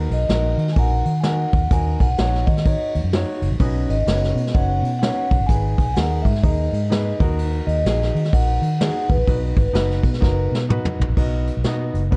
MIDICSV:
0, 0, Header, 1, 5, 480
1, 0, Start_track
1, 0, Key_signature, 5, "major"
1, 0, Tempo, 473186
1, 1737, Time_signature, 4, 2, 24, 8
1, 12342, End_track
2, 0, Start_track
2, 0, Title_t, "Vibraphone"
2, 0, Program_c, 0, 11
2, 136, Note_on_c, 0, 75, 85
2, 737, Note_on_c, 0, 80, 68
2, 752, Note_off_c, 0, 75, 0
2, 784, Note_off_c, 0, 80, 0
2, 804, Note_on_c, 0, 78, 95
2, 1222, Note_on_c, 0, 80, 72
2, 1229, Note_off_c, 0, 78, 0
2, 1267, Note_off_c, 0, 80, 0
2, 1269, Note_on_c, 0, 78, 93
2, 1748, Note_on_c, 0, 80, 107
2, 1757, Note_off_c, 0, 78, 0
2, 2040, Note_on_c, 0, 78, 105
2, 2048, Note_off_c, 0, 80, 0
2, 2499, Note_on_c, 0, 75, 79
2, 2531, Note_off_c, 0, 78, 0
2, 2952, Note_off_c, 0, 75, 0
2, 3956, Note_on_c, 0, 75, 86
2, 4609, Note_on_c, 0, 78, 93
2, 4635, Note_off_c, 0, 75, 0
2, 5052, Note_off_c, 0, 78, 0
2, 5064, Note_on_c, 0, 78, 97
2, 5523, Note_off_c, 0, 78, 0
2, 5544, Note_on_c, 0, 80, 108
2, 6028, Note_on_c, 0, 78, 92
2, 6053, Note_off_c, 0, 80, 0
2, 6309, Note_on_c, 0, 76, 84
2, 6347, Note_off_c, 0, 78, 0
2, 6400, Note_off_c, 0, 76, 0
2, 6522, Note_on_c, 0, 75, 77
2, 7263, Note_off_c, 0, 75, 0
2, 7781, Note_on_c, 0, 75, 104
2, 8453, Note_on_c, 0, 78, 106
2, 8466, Note_off_c, 0, 75, 0
2, 8910, Note_off_c, 0, 78, 0
2, 8922, Note_on_c, 0, 78, 103
2, 9223, Note_on_c, 0, 71, 82
2, 9233, Note_off_c, 0, 78, 0
2, 10808, Note_off_c, 0, 71, 0
2, 12342, End_track
3, 0, Start_track
3, 0, Title_t, "Upright piano"
3, 0, Program_c, 1, 0
3, 0, Note_on_c, 1, 63, 98
3, 0, Note_on_c, 1, 66, 82
3, 0, Note_on_c, 1, 70, 102
3, 195, Note_off_c, 1, 63, 0
3, 196, Note_off_c, 1, 66, 0
3, 228, Note_off_c, 1, 70, 0
3, 297, Note_on_c, 1, 63, 78
3, 299, Note_on_c, 1, 66, 72
3, 306, Note_on_c, 1, 70, 93
3, 642, Note_off_c, 1, 63, 0
3, 643, Note_off_c, 1, 66, 0
3, 647, Note_off_c, 1, 70, 0
3, 786, Note_on_c, 1, 63, 68
3, 786, Note_on_c, 1, 66, 66
3, 795, Note_on_c, 1, 70, 86
3, 1126, Note_off_c, 1, 63, 0
3, 1126, Note_off_c, 1, 66, 0
3, 1131, Note_off_c, 1, 70, 0
3, 1248, Note_on_c, 1, 63, 79
3, 1254, Note_on_c, 1, 66, 75
3, 1263, Note_on_c, 1, 70, 83
3, 1597, Note_off_c, 1, 63, 0
3, 1600, Note_off_c, 1, 66, 0
3, 1604, Note_off_c, 1, 70, 0
3, 1736, Note_on_c, 1, 63, 80
3, 1736, Note_on_c, 1, 66, 70
3, 1751, Note_on_c, 1, 70, 90
3, 2081, Note_off_c, 1, 63, 0
3, 2081, Note_off_c, 1, 66, 0
3, 2088, Note_off_c, 1, 70, 0
3, 2222, Note_on_c, 1, 66, 72
3, 2223, Note_on_c, 1, 63, 80
3, 2234, Note_on_c, 1, 73, 86
3, 2563, Note_off_c, 1, 66, 0
3, 2564, Note_off_c, 1, 63, 0
3, 2569, Note_off_c, 1, 73, 0
3, 2694, Note_on_c, 1, 63, 67
3, 2700, Note_on_c, 1, 66, 64
3, 2706, Note_on_c, 1, 73, 76
3, 3039, Note_off_c, 1, 63, 0
3, 3042, Note_off_c, 1, 66, 0
3, 3045, Note_off_c, 1, 73, 0
3, 3180, Note_on_c, 1, 63, 94
3, 3185, Note_on_c, 1, 66, 84
3, 3194, Note_on_c, 1, 73, 103
3, 3522, Note_off_c, 1, 63, 0
3, 3524, Note_off_c, 1, 66, 0
3, 3529, Note_off_c, 1, 73, 0
3, 3651, Note_on_c, 1, 61, 94
3, 3654, Note_on_c, 1, 66, 79
3, 3655, Note_on_c, 1, 71, 82
3, 3659, Note_on_c, 1, 63, 82
3, 3662, Note_on_c, 1, 75, 97
3, 3997, Note_off_c, 1, 61, 0
3, 3998, Note_off_c, 1, 66, 0
3, 3999, Note_off_c, 1, 71, 0
3, 4001, Note_off_c, 1, 63, 0
3, 4002, Note_off_c, 1, 75, 0
3, 4131, Note_on_c, 1, 61, 74
3, 4131, Note_on_c, 1, 66, 73
3, 4133, Note_on_c, 1, 63, 70
3, 4142, Note_on_c, 1, 73, 78
3, 4143, Note_on_c, 1, 71, 74
3, 4477, Note_off_c, 1, 61, 0
3, 4477, Note_off_c, 1, 66, 0
3, 4478, Note_off_c, 1, 63, 0
3, 4482, Note_off_c, 1, 73, 0
3, 4483, Note_off_c, 1, 71, 0
3, 4611, Note_on_c, 1, 61, 68
3, 4613, Note_on_c, 1, 63, 63
3, 4614, Note_on_c, 1, 66, 64
3, 4622, Note_on_c, 1, 73, 78
3, 4623, Note_on_c, 1, 71, 62
3, 4956, Note_off_c, 1, 61, 0
3, 4957, Note_off_c, 1, 63, 0
3, 4958, Note_off_c, 1, 66, 0
3, 4962, Note_off_c, 1, 71, 0
3, 4962, Note_off_c, 1, 73, 0
3, 5089, Note_on_c, 1, 61, 79
3, 5097, Note_on_c, 1, 63, 69
3, 5099, Note_on_c, 1, 66, 70
3, 5100, Note_on_c, 1, 73, 91
3, 5102, Note_on_c, 1, 71, 72
3, 5435, Note_off_c, 1, 61, 0
3, 5439, Note_off_c, 1, 63, 0
3, 5440, Note_off_c, 1, 66, 0
3, 5441, Note_off_c, 1, 73, 0
3, 5442, Note_off_c, 1, 71, 0
3, 5578, Note_on_c, 1, 63, 76
3, 5587, Note_on_c, 1, 68, 66
3, 5587, Note_on_c, 1, 71, 85
3, 5919, Note_off_c, 1, 63, 0
3, 5924, Note_off_c, 1, 68, 0
3, 5924, Note_off_c, 1, 71, 0
3, 6053, Note_on_c, 1, 63, 78
3, 6057, Note_on_c, 1, 68, 73
3, 6065, Note_on_c, 1, 70, 89
3, 6397, Note_off_c, 1, 63, 0
3, 6399, Note_off_c, 1, 68, 0
3, 6403, Note_off_c, 1, 70, 0
3, 6529, Note_on_c, 1, 63, 77
3, 6532, Note_on_c, 1, 68, 63
3, 6539, Note_on_c, 1, 70, 75
3, 6875, Note_off_c, 1, 63, 0
3, 6876, Note_off_c, 1, 68, 0
3, 6880, Note_off_c, 1, 70, 0
3, 6998, Note_on_c, 1, 63, 80
3, 7009, Note_on_c, 1, 68, 74
3, 7015, Note_on_c, 1, 71, 85
3, 7290, Note_off_c, 1, 63, 0
3, 7305, Note_on_c, 1, 63, 100
3, 7308, Note_off_c, 1, 68, 0
3, 7310, Note_on_c, 1, 66, 89
3, 7311, Note_off_c, 1, 71, 0
3, 7314, Note_on_c, 1, 70, 105
3, 7859, Note_off_c, 1, 63, 0
3, 7862, Note_off_c, 1, 66, 0
3, 7864, Note_off_c, 1, 70, 0
3, 7977, Note_on_c, 1, 63, 79
3, 7984, Note_on_c, 1, 66, 70
3, 7992, Note_on_c, 1, 68, 88
3, 8318, Note_off_c, 1, 63, 0
3, 8322, Note_off_c, 1, 66, 0
3, 8326, Note_off_c, 1, 68, 0
3, 8461, Note_on_c, 1, 63, 72
3, 8469, Note_on_c, 1, 70, 76
3, 8472, Note_on_c, 1, 66, 60
3, 8800, Note_off_c, 1, 63, 0
3, 8805, Note_off_c, 1, 70, 0
3, 8806, Note_off_c, 1, 66, 0
3, 8935, Note_on_c, 1, 63, 81
3, 8941, Note_on_c, 1, 66, 67
3, 8954, Note_on_c, 1, 68, 89
3, 9277, Note_off_c, 1, 63, 0
3, 9281, Note_off_c, 1, 66, 0
3, 9287, Note_off_c, 1, 68, 0
3, 9407, Note_on_c, 1, 63, 73
3, 9409, Note_on_c, 1, 66, 75
3, 9416, Note_on_c, 1, 71, 87
3, 9754, Note_off_c, 1, 63, 0
3, 9755, Note_off_c, 1, 66, 0
3, 9758, Note_off_c, 1, 71, 0
3, 9874, Note_on_c, 1, 63, 95
3, 9883, Note_on_c, 1, 71, 104
3, 9886, Note_on_c, 1, 66, 85
3, 10227, Note_off_c, 1, 63, 0
3, 10232, Note_off_c, 1, 71, 0
3, 10233, Note_off_c, 1, 66, 0
3, 10352, Note_on_c, 1, 66, 81
3, 10354, Note_on_c, 1, 63, 83
3, 10367, Note_on_c, 1, 70, 88
3, 10706, Note_off_c, 1, 66, 0
3, 10707, Note_off_c, 1, 63, 0
3, 10714, Note_off_c, 1, 70, 0
3, 10842, Note_on_c, 1, 63, 92
3, 10856, Note_on_c, 1, 66, 87
3, 10857, Note_on_c, 1, 71, 103
3, 11192, Note_off_c, 1, 63, 0
3, 11199, Note_off_c, 1, 66, 0
3, 11199, Note_off_c, 1, 71, 0
3, 11328, Note_on_c, 1, 63, 78
3, 11332, Note_on_c, 1, 66, 82
3, 11333, Note_on_c, 1, 59, 79
3, 11341, Note_on_c, 1, 75, 94
3, 11675, Note_off_c, 1, 63, 0
3, 11677, Note_off_c, 1, 66, 0
3, 11678, Note_off_c, 1, 59, 0
3, 11682, Note_off_c, 1, 75, 0
3, 11823, Note_on_c, 1, 59, 86
3, 11828, Note_on_c, 1, 63, 80
3, 11833, Note_on_c, 1, 66, 80
3, 11834, Note_on_c, 1, 75, 92
3, 12163, Note_off_c, 1, 59, 0
3, 12166, Note_off_c, 1, 63, 0
3, 12169, Note_off_c, 1, 66, 0
3, 12169, Note_off_c, 1, 75, 0
3, 12281, Note_on_c, 1, 59, 76
3, 12291, Note_on_c, 1, 63, 78
3, 12294, Note_on_c, 1, 66, 73
3, 12295, Note_on_c, 1, 71, 85
3, 12342, Note_off_c, 1, 59, 0
3, 12342, Note_off_c, 1, 63, 0
3, 12342, Note_off_c, 1, 66, 0
3, 12342, Note_off_c, 1, 71, 0
3, 12342, End_track
4, 0, Start_track
4, 0, Title_t, "Fingered electric bass"
4, 0, Program_c, 2, 33
4, 104, Note_on_c, 2, 35, 88
4, 261, Note_off_c, 2, 35, 0
4, 294, Note_on_c, 2, 34, 100
4, 544, Note_off_c, 2, 34, 0
4, 585, Note_on_c, 2, 51, 103
4, 741, Note_off_c, 2, 51, 0
4, 772, Note_on_c, 2, 34, 101
4, 1023, Note_off_c, 2, 34, 0
4, 1071, Note_on_c, 2, 51, 96
4, 1473, Note_off_c, 2, 51, 0
4, 1555, Note_on_c, 2, 39, 86
4, 1706, Note_off_c, 2, 39, 0
4, 1735, Note_on_c, 2, 39, 113
4, 1984, Note_off_c, 2, 39, 0
4, 2032, Note_on_c, 2, 35, 91
4, 2184, Note_off_c, 2, 35, 0
4, 2219, Note_on_c, 2, 34, 93
4, 2466, Note_off_c, 2, 34, 0
4, 2506, Note_on_c, 2, 51, 97
4, 2785, Note_off_c, 2, 51, 0
4, 2994, Note_on_c, 2, 39, 89
4, 3069, Note_off_c, 2, 39, 0
4, 3081, Note_on_c, 2, 42, 88
4, 3282, Note_off_c, 2, 42, 0
4, 3468, Note_on_c, 2, 30, 83
4, 3545, Note_off_c, 2, 30, 0
4, 3553, Note_on_c, 2, 34, 85
4, 3633, Note_off_c, 2, 34, 0
4, 3646, Note_on_c, 2, 35, 120
4, 3897, Note_off_c, 2, 35, 0
4, 3946, Note_on_c, 2, 32, 93
4, 4100, Note_off_c, 2, 32, 0
4, 4123, Note_on_c, 2, 30, 94
4, 4376, Note_off_c, 2, 30, 0
4, 4418, Note_on_c, 2, 47, 104
4, 4575, Note_off_c, 2, 47, 0
4, 4614, Note_on_c, 2, 30, 94
4, 4862, Note_off_c, 2, 30, 0
4, 4891, Note_on_c, 2, 47, 95
4, 5175, Note_off_c, 2, 47, 0
4, 5388, Note_on_c, 2, 35, 77
4, 5464, Note_off_c, 2, 35, 0
4, 5474, Note_on_c, 2, 31, 89
4, 5553, Note_off_c, 2, 31, 0
4, 5568, Note_on_c, 2, 32, 121
4, 5817, Note_off_c, 2, 32, 0
4, 5863, Note_on_c, 2, 35, 96
4, 6017, Note_off_c, 2, 35, 0
4, 6050, Note_on_c, 2, 39, 93
4, 6299, Note_off_c, 2, 39, 0
4, 6341, Note_on_c, 2, 44, 97
4, 6496, Note_off_c, 2, 44, 0
4, 6526, Note_on_c, 2, 39, 107
4, 6776, Note_off_c, 2, 39, 0
4, 6821, Note_on_c, 2, 44, 83
4, 7224, Note_off_c, 2, 44, 0
4, 7306, Note_on_c, 2, 39, 97
4, 7707, Note_off_c, 2, 39, 0
4, 7779, Note_on_c, 2, 39, 85
4, 7935, Note_off_c, 2, 39, 0
4, 7961, Note_on_c, 2, 34, 95
4, 8213, Note_off_c, 2, 34, 0
4, 8266, Note_on_c, 2, 51, 95
4, 8419, Note_off_c, 2, 51, 0
4, 8450, Note_on_c, 2, 34, 112
4, 8698, Note_off_c, 2, 34, 0
4, 8740, Note_on_c, 2, 51, 99
4, 9020, Note_off_c, 2, 51, 0
4, 9228, Note_on_c, 2, 39, 93
4, 9290, Note_off_c, 2, 39, 0
4, 9296, Note_on_c, 2, 34, 94
4, 9381, Note_off_c, 2, 34, 0
4, 9405, Note_on_c, 2, 35, 120
4, 9656, Note_off_c, 2, 35, 0
4, 9705, Note_on_c, 2, 32, 93
4, 9858, Note_off_c, 2, 32, 0
4, 9869, Note_on_c, 2, 30, 98
4, 10126, Note_off_c, 2, 30, 0
4, 10180, Note_on_c, 2, 47, 93
4, 10336, Note_off_c, 2, 47, 0
4, 10362, Note_on_c, 2, 30, 97
4, 10614, Note_off_c, 2, 30, 0
4, 10667, Note_on_c, 2, 47, 89
4, 10944, Note_off_c, 2, 47, 0
4, 11155, Note_on_c, 2, 35, 86
4, 11229, Note_off_c, 2, 35, 0
4, 11241, Note_on_c, 2, 34, 85
4, 11317, Note_off_c, 2, 34, 0
4, 11329, Note_on_c, 2, 35, 112
4, 11655, Note_off_c, 2, 35, 0
4, 11736, Note_on_c, 2, 35, 81
4, 11806, Note_off_c, 2, 35, 0
4, 11818, Note_on_c, 2, 47, 107
4, 12065, Note_off_c, 2, 47, 0
4, 12111, Note_on_c, 2, 30, 88
4, 12264, Note_off_c, 2, 30, 0
4, 12291, Note_on_c, 2, 47, 104
4, 12342, Note_off_c, 2, 47, 0
4, 12342, End_track
5, 0, Start_track
5, 0, Title_t, "Drums"
5, 114, Note_on_c, 9, 51, 63
5, 216, Note_off_c, 9, 51, 0
5, 293, Note_on_c, 9, 51, 72
5, 300, Note_on_c, 9, 38, 126
5, 394, Note_off_c, 9, 51, 0
5, 401, Note_off_c, 9, 38, 0
5, 593, Note_on_c, 9, 51, 60
5, 688, Note_on_c, 9, 38, 37
5, 695, Note_off_c, 9, 51, 0
5, 770, Note_on_c, 9, 51, 83
5, 774, Note_on_c, 9, 36, 105
5, 790, Note_off_c, 9, 38, 0
5, 871, Note_off_c, 9, 51, 0
5, 876, Note_off_c, 9, 36, 0
5, 1069, Note_on_c, 9, 51, 54
5, 1170, Note_off_c, 9, 51, 0
5, 1253, Note_on_c, 9, 38, 115
5, 1255, Note_on_c, 9, 51, 69
5, 1354, Note_off_c, 9, 38, 0
5, 1356, Note_off_c, 9, 51, 0
5, 1550, Note_on_c, 9, 46, 49
5, 1550, Note_on_c, 9, 51, 56
5, 1554, Note_on_c, 9, 36, 99
5, 1651, Note_off_c, 9, 46, 0
5, 1651, Note_off_c, 9, 51, 0
5, 1656, Note_off_c, 9, 36, 0
5, 1730, Note_on_c, 9, 51, 79
5, 1731, Note_on_c, 9, 44, 66
5, 1734, Note_on_c, 9, 36, 113
5, 1832, Note_off_c, 9, 44, 0
5, 1832, Note_off_c, 9, 51, 0
5, 1835, Note_off_c, 9, 36, 0
5, 2031, Note_on_c, 9, 51, 61
5, 2032, Note_on_c, 9, 36, 84
5, 2133, Note_off_c, 9, 36, 0
5, 2133, Note_off_c, 9, 51, 0
5, 2209, Note_on_c, 9, 51, 75
5, 2216, Note_on_c, 9, 38, 125
5, 2310, Note_off_c, 9, 51, 0
5, 2317, Note_off_c, 9, 38, 0
5, 2378, Note_on_c, 9, 38, 33
5, 2479, Note_off_c, 9, 38, 0
5, 2508, Note_on_c, 9, 36, 88
5, 2511, Note_on_c, 9, 51, 60
5, 2605, Note_on_c, 9, 38, 40
5, 2609, Note_off_c, 9, 36, 0
5, 2612, Note_off_c, 9, 51, 0
5, 2690, Note_on_c, 9, 51, 88
5, 2694, Note_on_c, 9, 36, 103
5, 2706, Note_off_c, 9, 38, 0
5, 2792, Note_off_c, 9, 51, 0
5, 2795, Note_off_c, 9, 36, 0
5, 2991, Note_on_c, 9, 51, 54
5, 3093, Note_off_c, 9, 51, 0
5, 3175, Note_on_c, 9, 38, 120
5, 3178, Note_on_c, 9, 51, 76
5, 3277, Note_off_c, 9, 38, 0
5, 3279, Note_off_c, 9, 51, 0
5, 3470, Note_on_c, 9, 51, 62
5, 3571, Note_off_c, 9, 51, 0
5, 3649, Note_on_c, 9, 51, 76
5, 3651, Note_on_c, 9, 36, 104
5, 3751, Note_off_c, 9, 51, 0
5, 3753, Note_off_c, 9, 36, 0
5, 3954, Note_on_c, 9, 51, 58
5, 4055, Note_off_c, 9, 51, 0
5, 4131, Note_on_c, 9, 51, 79
5, 4138, Note_on_c, 9, 38, 116
5, 4232, Note_off_c, 9, 51, 0
5, 4239, Note_off_c, 9, 38, 0
5, 4298, Note_on_c, 9, 38, 37
5, 4399, Note_off_c, 9, 38, 0
5, 4434, Note_on_c, 9, 51, 62
5, 4532, Note_on_c, 9, 38, 37
5, 4536, Note_off_c, 9, 51, 0
5, 4613, Note_on_c, 9, 36, 106
5, 4619, Note_on_c, 9, 51, 82
5, 4633, Note_off_c, 9, 38, 0
5, 4714, Note_off_c, 9, 36, 0
5, 4721, Note_off_c, 9, 51, 0
5, 4915, Note_on_c, 9, 51, 58
5, 5017, Note_off_c, 9, 51, 0
5, 5099, Note_on_c, 9, 38, 106
5, 5101, Note_on_c, 9, 51, 77
5, 5200, Note_off_c, 9, 38, 0
5, 5203, Note_off_c, 9, 51, 0
5, 5389, Note_on_c, 9, 36, 97
5, 5390, Note_on_c, 9, 46, 51
5, 5390, Note_on_c, 9, 51, 58
5, 5490, Note_off_c, 9, 36, 0
5, 5492, Note_off_c, 9, 46, 0
5, 5492, Note_off_c, 9, 51, 0
5, 5569, Note_on_c, 9, 36, 100
5, 5570, Note_on_c, 9, 51, 80
5, 5571, Note_on_c, 9, 44, 65
5, 5670, Note_off_c, 9, 36, 0
5, 5671, Note_off_c, 9, 51, 0
5, 5672, Note_off_c, 9, 44, 0
5, 5866, Note_on_c, 9, 36, 96
5, 5874, Note_on_c, 9, 51, 66
5, 5967, Note_off_c, 9, 36, 0
5, 5976, Note_off_c, 9, 51, 0
5, 6047, Note_on_c, 9, 51, 84
5, 6055, Note_on_c, 9, 38, 119
5, 6149, Note_off_c, 9, 51, 0
5, 6156, Note_off_c, 9, 38, 0
5, 6341, Note_on_c, 9, 36, 83
5, 6346, Note_on_c, 9, 51, 66
5, 6441, Note_on_c, 9, 38, 40
5, 6442, Note_off_c, 9, 36, 0
5, 6448, Note_off_c, 9, 51, 0
5, 6528, Note_on_c, 9, 36, 114
5, 6530, Note_on_c, 9, 51, 82
5, 6542, Note_off_c, 9, 38, 0
5, 6630, Note_off_c, 9, 36, 0
5, 6632, Note_off_c, 9, 51, 0
5, 6835, Note_on_c, 9, 51, 60
5, 6937, Note_off_c, 9, 51, 0
5, 7017, Note_on_c, 9, 38, 116
5, 7019, Note_on_c, 9, 51, 78
5, 7118, Note_off_c, 9, 38, 0
5, 7121, Note_off_c, 9, 51, 0
5, 7307, Note_on_c, 9, 36, 118
5, 7309, Note_on_c, 9, 51, 59
5, 7409, Note_off_c, 9, 36, 0
5, 7411, Note_off_c, 9, 51, 0
5, 7493, Note_on_c, 9, 51, 86
5, 7594, Note_off_c, 9, 51, 0
5, 7795, Note_on_c, 9, 51, 61
5, 7897, Note_off_c, 9, 51, 0
5, 7970, Note_on_c, 9, 51, 80
5, 7978, Note_on_c, 9, 38, 124
5, 8072, Note_off_c, 9, 51, 0
5, 8079, Note_off_c, 9, 38, 0
5, 8138, Note_on_c, 9, 38, 38
5, 8240, Note_off_c, 9, 38, 0
5, 8279, Note_on_c, 9, 51, 57
5, 8366, Note_on_c, 9, 38, 37
5, 8380, Note_off_c, 9, 51, 0
5, 8450, Note_on_c, 9, 36, 102
5, 8457, Note_on_c, 9, 51, 89
5, 8467, Note_off_c, 9, 38, 0
5, 8552, Note_off_c, 9, 36, 0
5, 8558, Note_off_c, 9, 51, 0
5, 8752, Note_on_c, 9, 51, 60
5, 8853, Note_off_c, 9, 51, 0
5, 8934, Note_on_c, 9, 38, 113
5, 8937, Note_on_c, 9, 51, 78
5, 9036, Note_off_c, 9, 38, 0
5, 9038, Note_off_c, 9, 51, 0
5, 9228, Note_on_c, 9, 36, 94
5, 9228, Note_on_c, 9, 51, 65
5, 9329, Note_off_c, 9, 36, 0
5, 9329, Note_off_c, 9, 51, 0
5, 9408, Note_on_c, 9, 36, 103
5, 9411, Note_on_c, 9, 51, 82
5, 9510, Note_off_c, 9, 36, 0
5, 9512, Note_off_c, 9, 51, 0
5, 9705, Note_on_c, 9, 36, 94
5, 9708, Note_on_c, 9, 51, 61
5, 9806, Note_off_c, 9, 36, 0
5, 9810, Note_off_c, 9, 51, 0
5, 9885, Note_on_c, 9, 51, 74
5, 9892, Note_on_c, 9, 38, 117
5, 9987, Note_off_c, 9, 51, 0
5, 9994, Note_off_c, 9, 38, 0
5, 10051, Note_on_c, 9, 38, 34
5, 10152, Note_off_c, 9, 38, 0
5, 10178, Note_on_c, 9, 36, 83
5, 10183, Note_on_c, 9, 51, 63
5, 10280, Note_off_c, 9, 36, 0
5, 10280, Note_on_c, 9, 38, 36
5, 10284, Note_off_c, 9, 51, 0
5, 10368, Note_on_c, 9, 36, 99
5, 10378, Note_off_c, 9, 38, 0
5, 10378, Note_on_c, 9, 38, 66
5, 10469, Note_off_c, 9, 36, 0
5, 10480, Note_off_c, 9, 38, 0
5, 10698, Note_on_c, 9, 38, 81
5, 10799, Note_off_c, 9, 38, 0
5, 10856, Note_on_c, 9, 45, 77
5, 10957, Note_off_c, 9, 45, 0
5, 11008, Note_on_c, 9, 43, 104
5, 11110, Note_off_c, 9, 43, 0
5, 11171, Note_on_c, 9, 43, 94
5, 11272, Note_off_c, 9, 43, 0
5, 11331, Note_on_c, 9, 36, 108
5, 11336, Note_on_c, 9, 49, 97
5, 11432, Note_off_c, 9, 36, 0
5, 11437, Note_off_c, 9, 49, 0
5, 11637, Note_on_c, 9, 42, 74
5, 11738, Note_off_c, 9, 42, 0
5, 11804, Note_on_c, 9, 42, 89
5, 11811, Note_on_c, 9, 38, 117
5, 11905, Note_off_c, 9, 42, 0
5, 11912, Note_off_c, 9, 38, 0
5, 12116, Note_on_c, 9, 42, 68
5, 12217, Note_off_c, 9, 42, 0
5, 12296, Note_on_c, 9, 36, 100
5, 12299, Note_on_c, 9, 42, 93
5, 12342, Note_off_c, 9, 36, 0
5, 12342, Note_off_c, 9, 42, 0
5, 12342, End_track
0, 0, End_of_file